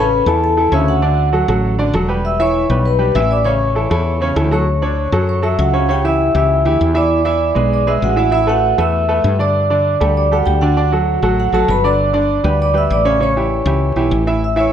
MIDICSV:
0, 0, Header, 1, 4, 480
1, 0, Start_track
1, 0, Key_signature, 2, "major"
1, 0, Tempo, 304260
1, 1619, Time_signature, 4, 2, 24, 8
1, 23233, End_track
2, 0, Start_track
2, 0, Title_t, "Vibraphone"
2, 0, Program_c, 0, 11
2, 0, Note_on_c, 0, 71, 84
2, 0, Note_on_c, 0, 83, 100
2, 405, Note_off_c, 0, 71, 0
2, 439, Note_on_c, 0, 81, 89
2, 443, Note_on_c, 0, 69, 64
2, 455, Note_off_c, 0, 83, 0
2, 543, Note_off_c, 0, 81, 0
2, 546, Note_off_c, 0, 69, 0
2, 690, Note_on_c, 0, 69, 68
2, 690, Note_on_c, 0, 81, 92
2, 1122, Note_off_c, 0, 69, 0
2, 1122, Note_off_c, 0, 81, 0
2, 1158, Note_on_c, 0, 76, 85
2, 1163, Note_on_c, 0, 88, 71
2, 1372, Note_off_c, 0, 76, 0
2, 1375, Note_off_c, 0, 88, 0
2, 1394, Note_on_c, 0, 78, 80
2, 1404, Note_on_c, 0, 66, 62
2, 2282, Note_off_c, 0, 78, 0
2, 2287, Note_off_c, 0, 66, 0
2, 3547, Note_on_c, 0, 76, 101
2, 3566, Note_on_c, 0, 88, 83
2, 3653, Note_off_c, 0, 76, 0
2, 3667, Note_off_c, 0, 88, 0
2, 3799, Note_on_c, 0, 73, 93
2, 3811, Note_on_c, 0, 85, 83
2, 4463, Note_off_c, 0, 85, 0
2, 4504, Note_on_c, 0, 71, 92
2, 4528, Note_off_c, 0, 73, 0
2, 4537, Note_on_c, 0, 83, 68
2, 4964, Note_off_c, 0, 83, 0
2, 4968, Note_on_c, 0, 76, 96
2, 4990, Note_on_c, 0, 88, 77
2, 4993, Note_off_c, 0, 71, 0
2, 5206, Note_off_c, 0, 88, 0
2, 5218, Note_on_c, 0, 74, 86
2, 5219, Note_off_c, 0, 76, 0
2, 5238, Note_on_c, 0, 86, 69
2, 5435, Note_on_c, 0, 73, 88
2, 5439, Note_off_c, 0, 74, 0
2, 5450, Note_off_c, 0, 86, 0
2, 5470, Note_on_c, 0, 85, 68
2, 7061, Note_off_c, 0, 73, 0
2, 7078, Note_off_c, 0, 85, 0
2, 7141, Note_on_c, 0, 73, 84
2, 7158, Note_on_c, 0, 85, 63
2, 8283, Note_off_c, 0, 85, 0
2, 8325, Note_off_c, 0, 73, 0
2, 8343, Note_on_c, 0, 73, 71
2, 8348, Note_on_c, 0, 85, 59
2, 8564, Note_off_c, 0, 85, 0
2, 8573, Note_on_c, 0, 76, 83
2, 8585, Note_off_c, 0, 73, 0
2, 8592, Note_on_c, 0, 88, 56
2, 8681, Note_off_c, 0, 76, 0
2, 8696, Note_off_c, 0, 88, 0
2, 8827, Note_on_c, 0, 78, 90
2, 8838, Note_on_c, 0, 66, 70
2, 9267, Note_off_c, 0, 78, 0
2, 9273, Note_off_c, 0, 66, 0
2, 9321, Note_on_c, 0, 79, 94
2, 9336, Note_on_c, 0, 67, 68
2, 9539, Note_off_c, 0, 67, 0
2, 9548, Note_on_c, 0, 76, 88
2, 9554, Note_off_c, 0, 79, 0
2, 9556, Note_on_c, 0, 88, 67
2, 9988, Note_off_c, 0, 76, 0
2, 9992, Note_off_c, 0, 88, 0
2, 10024, Note_on_c, 0, 76, 79
2, 10042, Note_on_c, 0, 88, 62
2, 10690, Note_off_c, 0, 76, 0
2, 10699, Note_off_c, 0, 88, 0
2, 10991, Note_on_c, 0, 74, 89
2, 11002, Note_on_c, 0, 86, 67
2, 12121, Note_off_c, 0, 74, 0
2, 12126, Note_off_c, 0, 86, 0
2, 12201, Note_on_c, 0, 74, 77
2, 12208, Note_on_c, 0, 86, 64
2, 12412, Note_off_c, 0, 74, 0
2, 12416, Note_off_c, 0, 86, 0
2, 12429, Note_on_c, 0, 76, 80
2, 12440, Note_on_c, 0, 88, 67
2, 12646, Note_off_c, 0, 76, 0
2, 12652, Note_off_c, 0, 88, 0
2, 12678, Note_on_c, 0, 66, 73
2, 12681, Note_on_c, 0, 78, 98
2, 12891, Note_off_c, 0, 66, 0
2, 12900, Note_off_c, 0, 78, 0
2, 12918, Note_on_c, 0, 78, 84
2, 12922, Note_on_c, 0, 66, 62
2, 13133, Note_off_c, 0, 66, 0
2, 13154, Note_off_c, 0, 78, 0
2, 13167, Note_on_c, 0, 76, 92
2, 13170, Note_on_c, 0, 88, 72
2, 13376, Note_off_c, 0, 76, 0
2, 13378, Note_off_c, 0, 88, 0
2, 13399, Note_on_c, 0, 78, 101
2, 13402, Note_on_c, 0, 66, 70
2, 13835, Note_off_c, 0, 78, 0
2, 13837, Note_off_c, 0, 66, 0
2, 13889, Note_on_c, 0, 76, 83
2, 13896, Note_on_c, 0, 88, 66
2, 14544, Note_off_c, 0, 76, 0
2, 14548, Note_off_c, 0, 88, 0
2, 14846, Note_on_c, 0, 74, 96
2, 14847, Note_on_c, 0, 86, 69
2, 15970, Note_off_c, 0, 74, 0
2, 15970, Note_off_c, 0, 86, 0
2, 16048, Note_on_c, 0, 86, 62
2, 16050, Note_on_c, 0, 74, 84
2, 16258, Note_off_c, 0, 86, 0
2, 16259, Note_off_c, 0, 74, 0
2, 16287, Note_on_c, 0, 66, 67
2, 16296, Note_on_c, 0, 78, 82
2, 16497, Note_on_c, 0, 79, 99
2, 16498, Note_off_c, 0, 66, 0
2, 16502, Note_off_c, 0, 78, 0
2, 16504, Note_on_c, 0, 67, 75
2, 16725, Note_off_c, 0, 67, 0
2, 16742, Note_on_c, 0, 78, 95
2, 16745, Note_off_c, 0, 79, 0
2, 16745, Note_on_c, 0, 66, 77
2, 17879, Note_off_c, 0, 78, 0
2, 17880, Note_off_c, 0, 66, 0
2, 17976, Note_on_c, 0, 66, 69
2, 17981, Note_on_c, 0, 78, 90
2, 18183, Note_off_c, 0, 66, 0
2, 18208, Note_off_c, 0, 78, 0
2, 18211, Note_on_c, 0, 69, 74
2, 18214, Note_on_c, 0, 81, 91
2, 18421, Note_off_c, 0, 69, 0
2, 18445, Note_off_c, 0, 81, 0
2, 18465, Note_on_c, 0, 83, 109
2, 18468, Note_on_c, 0, 71, 83
2, 18670, Note_off_c, 0, 71, 0
2, 18690, Note_off_c, 0, 83, 0
2, 18697, Note_on_c, 0, 86, 72
2, 18702, Note_on_c, 0, 74, 87
2, 19817, Note_off_c, 0, 86, 0
2, 19820, Note_off_c, 0, 74, 0
2, 19906, Note_on_c, 0, 86, 68
2, 19910, Note_on_c, 0, 74, 86
2, 20005, Note_off_c, 0, 86, 0
2, 20007, Note_off_c, 0, 74, 0
2, 20150, Note_on_c, 0, 88, 70
2, 20157, Note_on_c, 0, 76, 84
2, 20351, Note_off_c, 0, 88, 0
2, 20377, Note_off_c, 0, 76, 0
2, 20382, Note_on_c, 0, 86, 71
2, 20389, Note_on_c, 0, 74, 94
2, 20811, Note_off_c, 0, 86, 0
2, 20814, Note_off_c, 0, 74, 0
2, 20869, Note_on_c, 0, 85, 66
2, 20873, Note_on_c, 0, 73, 81
2, 22225, Note_off_c, 0, 85, 0
2, 22227, Note_off_c, 0, 73, 0
2, 22785, Note_on_c, 0, 76, 83
2, 22786, Note_on_c, 0, 88, 63
2, 22990, Note_off_c, 0, 76, 0
2, 22991, Note_off_c, 0, 88, 0
2, 23028, Note_on_c, 0, 73, 87
2, 23034, Note_on_c, 0, 85, 62
2, 23233, Note_off_c, 0, 73, 0
2, 23233, Note_off_c, 0, 85, 0
2, 23233, End_track
3, 0, Start_track
3, 0, Title_t, "Grand piano"
3, 0, Program_c, 1, 0
3, 0, Note_on_c, 1, 49, 84
3, 0, Note_on_c, 1, 61, 87
3, 0, Note_on_c, 1, 73, 78
3, 343, Note_off_c, 1, 49, 0
3, 343, Note_off_c, 1, 61, 0
3, 348, Note_off_c, 1, 73, 0
3, 424, Note_on_c, 1, 52, 74
3, 430, Note_on_c, 1, 69, 71
3, 435, Note_on_c, 1, 64, 72
3, 815, Note_off_c, 1, 52, 0
3, 819, Note_off_c, 1, 69, 0
3, 822, Note_off_c, 1, 64, 0
3, 898, Note_on_c, 1, 52, 71
3, 902, Note_on_c, 1, 64, 72
3, 909, Note_on_c, 1, 69, 72
3, 1095, Note_off_c, 1, 52, 0
3, 1098, Note_off_c, 1, 64, 0
3, 1102, Note_off_c, 1, 69, 0
3, 1128, Note_on_c, 1, 49, 81
3, 1133, Note_on_c, 1, 61, 85
3, 1145, Note_on_c, 1, 73, 75
3, 1526, Note_off_c, 1, 49, 0
3, 1529, Note_off_c, 1, 61, 0
3, 1536, Note_off_c, 1, 73, 0
3, 1609, Note_on_c, 1, 50, 79
3, 1612, Note_on_c, 1, 74, 79
3, 1615, Note_on_c, 1, 62, 78
3, 2006, Note_off_c, 1, 50, 0
3, 2008, Note_off_c, 1, 74, 0
3, 2009, Note_off_c, 1, 62, 0
3, 2090, Note_on_c, 1, 54, 66
3, 2094, Note_on_c, 1, 66, 67
3, 2101, Note_on_c, 1, 69, 67
3, 2290, Note_off_c, 1, 54, 0
3, 2292, Note_off_c, 1, 66, 0
3, 2296, Note_off_c, 1, 69, 0
3, 2338, Note_on_c, 1, 54, 72
3, 2343, Note_on_c, 1, 66, 68
3, 2348, Note_on_c, 1, 69, 69
3, 2731, Note_off_c, 1, 54, 0
3, 2734, Note_off_c, 1, 66, 0
3, 2737, Note_off_c, 1, 69, 0
3, 2816, Note_on_c, 1, 50, 87
3, 2819, Note_on_c, 1, 62, 87
3, 2828, Note_on_c, 1, 74, 88
3, 3013, Note_off_c, 1, 50, 0
3, 3015, Note_off_c, 1, 62, 0
3, 3020, Note_off_c, 1, 74, 0
3, 3057, Note_on_c, 1, 54, 74
3, 3064, Note_on_c, 1, 66, 72
3, 3068, Note_on_c, 1, 69, 73
3, 3253, Note_off_c, 1, 54, 0
3, 3258, Note_off_c, 1, 66, 0
3, 3260, Note_off_c, 1, 69, 0
3, 3288, Note_on_c, 1, 55, 77
3, 3293, Note_on_c, 1, 67, 76
3, 3297, Note_on_c, 1, 71, 77
3, 3684, Note_off_c, 1, 55, 0
3, 3687, Note_off_c, 1, 67, 0
3, 3690, Note_off_c, 1, 71, 0
3, 3779, Note_on_c, 1, 52, 85
3, 3782, Note_on_c, 1, 76, 87
3, 3790, Note_on_c, 1, 64, 78
3, 4171, Note_off_c, 1, 52, 0
3, 4173, Note_off_c, 1, 76, 0
3, 4177, Note_off_c, 1, 64, 0
3, 4254, Note_on_c, 1, 55, 71
3, 4259, Note_on_c, 1, 67, 70
3, 4267, Note_on_c, 1, 71, 76
3, 4648, Note_off_c, 1, 55, 0
3, 4651, Note_off_c, 1, 67, 0
3, 4656, Note_off_c, 1, 71, 0
3, 4712, Note_on_c, 1, 55, 83
3, 4713, Note_on_c, 1, 67, 74
3, 4725, Note_on_c, 1, 71, 73
3, 4918, Note_off_c, 1, 55, 0
3, 4919, Note_off_c, 1, 67, 0
3, 4925, Note_off_c, 1, 71, 0
3, 4971, Note_on_c, 1, 52, 84
3, 4971, Note_on_c, 1, 64, 78
3, 4977, Note_on_c, 1, 76, 85
3, 5365, Note_off_c, 1, 52, 0
3, 5366, Note_off_c, 1, 64, 0
3, 5369, Note_off_c, 1, 76, 0
3, 5445, Note_on_c, 1, 49, 86
3, 5446, Note_on_c, 1, 61, 80
3, 5449, Note_on_c, 1, 73, 83
3, 5842, Note_off_c, 1, 49, 0
3, 5843, Note_off_c, 1, 61, 0
3, 5844, Note_off_c, 1, 73, 0
3, 5918, Note_on_c, 1, 52, 69
3, 5924, Note_on_c, 1, 64, 67
3, 5932, Note_on_c, 1, 69, 70
3, 6121, Note_off_c, 1, 52, 0
3, 6124, Note_off_c, 1, 64, 0
3, 6130, Note_off_c, 1, 69, 0
3, 6155, Note_on_c, 1, 52, 73
3, 6165, Note_on_c, 1, 64, 80
3, 6169, Note_on_c, 1, 69, 74
3, 6556, Note_off_c, 1, 52, 0
3, 6562, Note_off_c, 1, 64, 0
3, 6564, Note_off_c, 1, 69, 0
3, 6635, Note_on_c, 1, 49, 83
3, 6652, Note_on_c, 1, 61, 87
3, 6653, Note_on_c, 1, 73, 86
3, 6839, Note_off_c, 1, 49, 0
3, 6849, Note_off_c, 1, 61, 0
3, 6850, Note_off_c, 1, 73, 0
3, 6873, Note_on_c, 1, 52, 73
3, 6881, Note_on_c, 1, 64, 73
3, 6886, Note_on_c, 1, 69, 70
3, 7078, Note_off_c, 1, 52, 0
3, 7083, Note_off_c, 1, 64, 0
3, 7086, Note_off_c, 1, 69, 0
3, 7119, Note_on_c, 1, 54, 76
3, 7120, Note_on_c, 1, 66, 76
3, 7133, Note_on_c, 1, 69, 75
3, 7321, Note_off_c, 1, 54, 0
3, 7322, Note_off_c, 1, 66, 0
3, 7330, Note_off_c, 1, 69, 0
3, 7601, Note_on_c, 1, 50, 79
3, 7607, Note_on_c, 1, 62, 81
3, 7613, Note_on_c, 1, 73, 80
3, 7999, Note_off_c, 1, 50, 0
3, 8003, Note_off_c, 1, 62, 0
3, 8006, Note_off_c, 1, 73, 0
3, 8082, Note_on_c, 1, 54, 71
3, 8085, Note_on_c, 1, 66, 69
3, 8089, Note_on_c, 1, 69, 75
3, 8480, Note_off_c, 1, 54, 0
3, 8482, Note_off_c, 1, 66, 0
3, 8484, Note_off_c, 1, 69, 0
3, 8556, Note_on_c, 1, 54, 76
3, 8563, Note_on_c, 1, 69, 74
3, 8566, Note_on_c, 1, 66, 68
3, 8957, Note_off_c, 1, 54, 0
3, 8961, Note_off_c, 1, 69, 0
3, 8962, Note_off_c, 1, 66, 0
3, 9043, Note_on_c, 1, 49, 82
3, 9048, Note_on_c, 1, 61, 75
3, 9051, Note_on_c, 1, 73, 82
3, 9244, Note_off_c, 1, 49, 0
3, 9247, Note_off_c, 1, 61, 0
3, 9249, Note_off_c, 1, 73, 0
3, 9283, Note_on_c, 1, 49, 82
3, 9290, Note_on_c, 1, 61, 81
3, 9291, Note_on_c, 1, 73, 80
3, 9484, Note_off_c, 1, 49, 0
3, 9489, Note_off_c, 1, 61, 0
3, 9489, Note_off_c, 1, 73, 0
3, 9533, Note_on_c, 1, 52, 70
3, 9537, Note_on_c, 1, 64, 72
3, 9537, Note_on_c, 1, 67, 72
3, 9927, Note_off_c, 1, 52, 0
3, 9929, Note_off_c, 1, 64, 0
3, 9929, Note_off_c, 1, 67, 0
3, 10012, Note_on_c, 1, 52, 74
3, 10018, Note_on_c, 1, 64, 73
3, 10023, Note_on_c, 1, 67, 74
3, 10407, Note_off_c, 1, 52, 0
3, 10410, Note_off_c, 1, 64, 0
3, 10413, Note_off_c, 1, 67, 0
3, 10495, Note_on_c, 1, 52, 75
3, 10502, Note_on_c, 1, 64, 80
3, 10504, Note_on_c, 1, 67, 76
3, 10889, Note_off_c, 1, 52, 0
3, 10893, Note_off_c, 1, 64, 0
3, 10894, Note_off_c, 1, 67, 0
3, 10953, Note_on_c, 1, 52, 83
3, 10962, Note_on_c, 1, 76, 91
3, 10966, Note_on_c, 1, 64, 78
3, 11356, Note_off_c, 1, 52, 0
3, 11361, Note_off_c, 1, 76, 0
3, 11363, Note_off_c, 1, 64, 0
3, 11436, Note_on_c, 1, 52, 82
3, 11436, Note_on_c, 1, 64, 87
3, 11447, Note_on_c, 1, 76, 83
3, 11837, Note_off_c, 1, 52, 0
3, 11838, Note_off_c, 1, 64, 0
3, 11844, Note_off_c, 1, 76, 0
3, 11907, Note_on_c, 1, 56, 75
3, 11918, Note_on_c, 1, 68, 69
3, 11919, Note_on_c, 1, 71, 70
3, 12313, Note_off_c, 1, 56, 0
3, 12319, Note_off_c, 1, 68, 0
3, 12319, Note_off_c, 1, 71, 0
3, 12416, Note_on_c, 1, 68, 81
3, 12417, Note_on_c, 1, 56, 76
3, 12422, Note_on_c, 1, 71, 74
3, 12810, Note_off_c, 1, 56, 0
3, 12810, Note_off_c, 1, 68, 0
3, 12813, Note_off_c, 1, 71, 0
3, 12872, Note_on_c, 1, 52, 82
3, 12881, Note_on_c, 1, 64, 78
3, 12891, Note_on_c, 1, 76, 84
3, 13079, Note_off_c, 1, 52, 0
3, 13084, Note_off_c, 1, 64, 0
3, 13090, Note_off_c, 1, 76, 0
3, 13111, Note_on_c, 1, 52, 80
3, 13118, Note_on_c, 1, 64, 78
3, 13125, Note_on_c, 1, 76, 85
3, 13318, Note_off_c, 1, 52, 0
3, 13322, Note_off_c, 1, 64, 0
3, 13327, Note_off_c, 1, 76, 0
3, 13359, Note_on_c, 1, 57, 74
3, 13365, Note_on_c, 1, 69, 79
3, 13366, Note_on_c, 1, 71, 76
3, 13760, Note_off_c, 1, 57, 0
3, 13763, Note_off_c, 1, 69, 0
3, 13764, Note_off_c, 1, 71, 0
3, 13852, Note_on_c, 1, 57, 70
3, 13852, Note_on_c, 1, 69, 74
3, 13860, Note_on_c, 1, 71, 78
3, 14248, Note_off_c, 1, 57, 0
3, 14248, Note_off_c, 1, 69, 0
3, 14253, Note_off_c, 1, 71, 0
3, 14332, Note_on_c, 1, 57, 70
3, 14335, Note_on_c, 1, 69, 77
3, 14338, Note_on_c, 1, 71, 77
3, 14728, Note_off_c, 1, 57, 0
3, 14730, Note_off_c, 1, 69, 0
3, 14731, Note_off_c, 1, 71, 0
3, 14806, Note_on_c, 1, 50, 73
3, 14818, Note_on_c, 1, 62, 76
3, 14828, Note_on_c, 1, 74, 84
3, 15205, Note_off_c, 1, 50, 0
3, 15212, Note_off_c, 1, 62, 0
3, 15218, Note_off_c, 1, 74, 0
3, 15305, Note_on_c, 1, 50, 79
3, 15307, Note_on_c, 1, 62, 78
3, 15317, Note_on_c, 1, 74, 76
3, 15696, Note_off_c, 1, 50, 0
3, 15697, Note_off_c, 1, 62, 0
3, 15703, Note_off_c, 1, 74, 0
3, 15782, Note_on_c, 1, 55, 79
3, 15787, Note_on_c, 1, 67, 69
3, 15789, Note_on_c, 1, 69, 72
3, 16174, Note_off_c, 1, 55, 0
3, 16177, Note_off_c, 1, 67, 0
3, 16179, Note_off_c, 1, 69, 0
3, 16269, Note_on_c, 1, 55, 71
3, 16274, Note_on_c, 1, 67, 71
3, 16288, Note_on_c, 1, 69, 77
3, 16659, Note_off_c, 1, 55, 0
3, 16662, Note_off_c, 1, 67, 0
3, 16670, Note_off_c, 1, 69, 0
3, 16747, Note_on_c, 1, 50, 87
3, 16756, Note_on_c, 1, 62, 84
3, 16759, Note_on_c, 1, 74, 80
3, 16941, Note_off_c, 1, 50, 0
3, 16946, Note_off_c, 1, 62, 0
3, 16948, Note_off_c, 1, 74, 0
3, 16986, Note_on_c, 1, 50, 73
3, 16989, Note_on_c, 1, 62, 81
3, 16995, Note_on_c, 1, 74, 81
3, 17181, Note_off_c, 1, 50, 0
3, 17182, Note_off_c, 1, 62, 0
3, 17186, Note_off_c, 1, 74, 0
3, 17230, Note_on_c, 1, 54, 68
3, 17233, Note_on_c, 1, 66, 71
3, 17244, Note_on_c, 1, 69, 70
3, 17620, Note_off_c, 1, 54, 0
3, 17622, Note_off_c, 1, 66, 0
3, 17628, Note_off_c, 1, 69, 0
3, 17711, Note_on_c, 1, 54, 74
3, 17716, Note_on_c, 1, 66, 78
3, 17718, Note_on_c, 1, 69, 80
3, 18101, Note_off_c, 1, 54, 0
3, 18104, Note_off_c, 1, 66, 0
3, 18105, Note_off_c, 1, 69, 0
3, 18193, Note_on_c, 1, 54, 76
3, 18198, Note_on_c, 1, 69, 72
3, 18202, Note_on_c, 1, 66, 82
3, 18582, Note_off_c, 1, 54, 0
3, 18585, Note_off_c, 1, 69, 0
3, 18587, Note_off_c, 1, 66, 0
3, 18677, Note_on_c, 1, 50, 83
3, 18680, Note_on_c, 1, 62, 80
3, 18686, Note_on_c, 1, 74, 84
3, 19065, Note_off_c, 1, 50, 0
3, 19066, Note_off_c, 1, 62, 0
3, 19070, Note_off_c, 1, 74, 0
3, 19136, Note_on_c, 1, 50, 84
3, 19148, Note_on_c, 1, 74, 89
3, 19150, Note_on_c, 1, 62, 77
3, 19533, Note_off_c, 1, 50, 0
3, 19539, Note_off_c, 1, 74, 0
3, 19541, Note_off_c, 1, 62, 0
3, 19621, Note_on_c, 1, 55, 77
3, 19630, Note_on_c, 1, 67, 72
3, 19634, Note_on_c, 1, 71, 78
3, 20016, Note_off_c, 1, 55, 0
3, 20021, Note_off_c, 1, 67, 0
3, 20023, Note_off_c, 1, 71, 0
3, 20093, Note_on_c, 1, 55, 76
3, 20098, Note_on_c, 1, 67, 76
3, 20106, Note_on_c, 1, 71, 75
3, 20491, Note_off_c, 1, 55, 0
3, 20494, Note_off_c, 1, 67, 0
3, 20499, Note_off_c, 1, 71, 0
3, 20584, Note_on_c, 1, 49, 86
3, 20592, Note_on_c, 1, 61, 84
3, 20594, Note_on_c, 1, 73, 90
3, 20781, Note_off_c, 1, 49, 0
3, 20785, Note_off_c, 1, 61, 0
3, 20787, Note_off_c, 1, 73, 0
3, 20826, Note_on_c, 1, 49, 83
3, 20828, Note_on_c, 1, 61, 76
3, 20836, Note_on_c, 1, 73, 78
3, 21022, Note_off_c, 1, 49, 0
3, 21023, Note_off_c, 1, 61, 0
3, 21028, Note_off_c, 1, 73, 0
3, 21089, Note_on_c, 1, 52, 77
3, 21089, Note_on_c, 1, 67, 71
3, 21093, Note_on_c, 1, 64, 73
3, 21472, Note_off_c, 1, 52, 0
3, 21472, Note_off_c, 1, 67, 0
3, 21475, Note_off_c, 1, 64, 0
3, 21549, Note_on_c, 1, 52, 74
3, 21563, Note_on_c, 1, 64, 72
3, 21563, Note_on_c, 1, 67, 70
3, 21941, Note_off_c, 1, 52, 0
3, 21949, Note_off_c, 1, 64, 0
3, 21949, Note_off_c, 1, 67, 0
3, 22029, Note_on_c, 1, 64, 76
3, 22030, Note_on_c, 1, 52, 81
3, 22032, Note_on_c, 1, 67, 70
3, 22421, Note_off_c, 1, 64, 0
3, 22422, Note_off_c, 1, 52, 0
3, 22423, Note_off_c, 1, 67, 0
3, 22509, Note_on_c, 1, 52, 75
3, 22514, Note_on_c, 1, 64, 82
3, 22518, Note_on_c, 1, 76, 86
3, 22705, Note_off_c, 1, 52, 0
3, 22707, Note_off_c, 1, 64, 0
3, 22710, Note_off_c, 1, 76, 0
3, 22968, Note_on_c, 1, 52, 84
3, 22972, Note_on_c, 1, 64, 86
3, 22987, Note_on_c, 1, 76, 81
3, 23233, Note_off_c, 1, 52, 0
3, 23233, Note_off_c, 1, 64, 0
3, 23233, Note_off_c, 1, 76, 0
3, 23233, End_track
4, 0, Start_track
4, 0, Title_t, "Fretless electric bass"
4, 0, Program_c, 2, 35
4, 0, Note_on_c, 2, 33, 84
4, 331, Note_off_c, 2, 33, 0
4, 414, Note_on_c, 2, 40, 87
4, 1086, Note_off_c, 2, 40, 0
4, 1134, Note_on_c, 2, 38, 88
4, 2248, Note_off_c, 2, 38, 0
4, 2339, Note_on_c, 2, 33, 92
4, 3007, Note_off_c, 2, 33, 0
4, 3052, Note_on_c, 2, 28, 96
4, 4166, Note_off_c, 2, 28, 0
4, 4253, Note_on_c, 2, 35, 93
4, 4923, Note_off_c, 2, 35, 0
4, 4970, Note_on_c, 2, 33, 96
4, 6084, Note_off_c, 2, 33, 0
4, 6166, Note_on_c, 2, 40, 97
4, 6839, Note_off_c, 2, 40, 0
4, 6882, Note_on_c, 2, 38, 96
4, 8000, Note_off_c, 2, 38, 0
4, 8082, Note_on_c, 2, 42, 88
4, 8757, Note_off_c, 2, 42, 0
4, 8812, Note_on_c, 2, 37, 96
4, 9926, Note_off_c, 2, 37, 0
4, 10012, Note_on_c, 2, 37, 87
4, 10460, Note_off_c, 2, 37, 0
4, 10495, Note_on_c, 2, 38, 69
4, 10718, Note_off_c, 2, 38, 0
4, 10741, Note_on_c, 2, 40, 90
4, 11851, Note_off_c, 2, 40, 0
4, 11925, Note_on_c, 2, 35, 84
4, 12600, Note_off_c, 2, 35, 0
4, 12657, Note_on_c, 2, 33, 90
4, 13770, Note_off_c, 2, 33, 0
4, 13855, Note_on_c, 2, 40, 86
4, 14526, Note_off_c, 2, 40, 0
4, 14580, Note_on_c, 2, 43, 91
4, 15693, Note_off_c, 2, 43, 0
4, 15795, Note_on_c, 2, 38, 89
4, 16458, Note_off_c, 2, 38, 0
4, 16510, Note_on_c, 2, 38, 84
4, 17619, Note_off_c, 2, 38, 0
4, 17708, Note_on_c, 2, 33, 83
4, 18151, Note_off_c, 2, 33, 0
4, 18180, Note_on_c, 2, 33, 70
4, 18404, Note_off_c, 2, 33, 0
4, 18430, Note_on_c, 2, 31, 98
4, 19540, Note_off_c, 2, 31, 0
4, 19629, Note_on_c, 2, 38, 97
4, 20296, Note_off_c, 2, 38, 0
4, 20357, Note_on_c, 2, 33, 97
4, 21464, Note_off_c, 2, 33, 0
4, 21543, Note_on_c, 2, 37, 98
4, 21991, Note_off_c, 2, 37, 0
4, 22022, Note_on_c, 2, 35, 65
4, 22246, Note_off_c, 2, 35, 0
4, 22264, Note_on_c, 2, 33, 96
4, 23233, Note_off_c, 2, 33, 0
4, 23233, End_track
0, 0, End_of_file